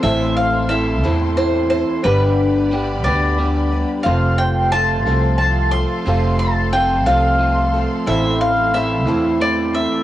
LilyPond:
<<
  \new Staff \with { instrumentName = "Mandolin" } { \time 6/8 \key f \lydian \tempo 4. = 60 e''8 f''8 e''4 c''8 c''8 | b'4. d''4 r8 | f''8 g''8 a''4 a''8 c'''8~ | c'''8 a''8 g''8 f''4 r8 |
e''8 f''8 e''4 d''8 e''8 | }
  \new Staff \with { instrumentName = "String section" } { \time 6/8 \key f \lydian << { <a' c'''>2. | <g' b''>2. | <a' c'''>2.~ | <a' c'''>2.~ |
<a' c'''>2. | } \\ { c''2. | d''2. | f''2.~ | f''2. |
c''2. | } >> }
  \new Staff \with { instrumentName = "Grand piano" } { \time 6/8 \key f \lydian <c' a' c''>4. <e' a' c''>4. | <d' g' b'>4. <d' g' b'>4. | <f' a' c''>4. <f' a' c''>4. | <f' a' c''>4. <f' a' c''>4. |
<c' a' c''>4. <e' a' c''>4. | }
  \new Staff \with { instrumentName = "Twelve-string acoustic guitar" } { \time 6/8 \key f \lydian <a, e a c' a'>4 <a c' e' a'>8 <a, e a c' e' a'>4 <a c' e' a'>8 | <g, d g b d' b'>4 <g b d' b'>8 <g, d g b d' b'>4 <g b d' b'>8 | <f c' f' a'>4 <f c' f' a'>8 <f c' f' a'>4 <c' f' a'>8 | <f c' f' a'>4 <f c' f' a'>8 <f c' f' a'>4 <c' f' a'>8 |
<a, e a c' a'>4 <a c' e' a'>8 <a, e a c' e' a'>4 <a c' e' a'>8 | }
  \new Staff \with { instrumentName = "Clean electric guitar" } { \time 6/8 \key f \lydian <a, e c' e' a'>4 <e c' e' a'>8 <a, e c' e' a'>8 <e c' e' a'>4 | <g, d g b d' g'>4 <g b d' g'>8 <g, d g b d' g'>8 <g b d' g'>4 | <f, c f a c' f'>4 <f a c' f'>8 <f, c f a c' f'>8 <f a c' f'>4 | <f, c f a c' f'>4 <f a c' f'>8 <f, c f a c' f'>8 <f a c' f'>4 |
<a, e a c' e'>4 <e a c' e'>8 <a, e a c' e'>8 <e a c' e'>4 | }
  \new Staff \with { instrumentName = "Upright bass" } { \clef bass \time 6/8 \key f \lydian a,,4. e,4. | g,,4. d,4. | f,,4. c,4. | f,,4. c,4. |
a,,4. e,4. | }
>>